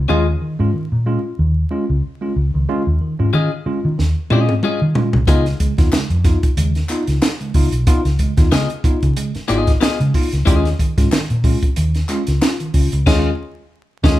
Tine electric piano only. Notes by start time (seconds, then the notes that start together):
0.09 G#3 C#4 F4
0.41 D#3
0.59 G#3 C#4 F4
0.74 D#3
1.06 G#3 C#4 F4
1.24 C#4 F4
1.39 D#3
1.71 G#3 C#4 F4
1.89 C#4 F4
2.21 G#3 C#4 F4
2.54 D#3
2.69 G#3 C#4 F4
3.01 D#3
3.19 G#3 C#4 F4
3.34 D#3
3.66 G#3 C#4 F4
3.84 C#4 F4
3.98 D#3
4.31 G#3 C#4 F4
4.63 C#4 F4
4.81 D#3
4.95 G#3 C#4 F4
5.27 B3 D#4 F4
5.60 C#3 G#3
5.78 B3 D#4 F4
5.92 C#3 G#3
6.24 B3 D#4 F4
6.57 C#3 G#3
6.90 B3 D#4 F4
7.22 D#4 F4
7.41 C#3 G#3
7.55 B3 D#4 F4
7.87 B3 D#4 F4
8.20 C#3 G#3
8.37 B3 D#4 F4
8.52 C#3 G#3
8.84 B3 D#4 F4
9.02 D#4 F4
9.17 C#3 G#3
9.49 B3 D#4 F4
10.00 C#3 G#3
10.14 B3 D#4 F4
10.47 G#3 C#4 F4
10.79 D#3
10.97 G#3 C#4 F4
11.12 D#3
11.44 G#3 C#4 F4
11.63 C#4 F4
11.77 D#3
12.09 G#3 C#4 F4
12.41 C#4 F4
12.60 D#3
12.74 C#4 F4
13.07 G#3 C#4 F4
14.03 G#3 C#4 F4